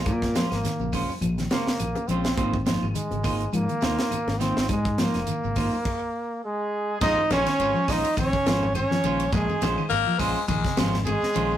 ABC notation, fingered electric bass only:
X:1
M:4/4
L:1/16
Q:"Swing 16ths" 1/4=104
K:Bbdor
V:1 name="Fingered electric bass" clef=bass
B,,3 A,,, z B,,,2 z B,,,2 z2 B,,, z B,,,2 | A,,,3 A,,, z A,,,3 A,, z E,, z2 A,,,2 A,,, | A,,3 F,,, z A,,,2 z8 z | B,,, z B,,, z A,,, z B,,, z B,,, z A,,,3 z B,,,2 |
B,,, z B,,, z A,,, z B,,, z B,,, z A,,,3 z B,,,2 |]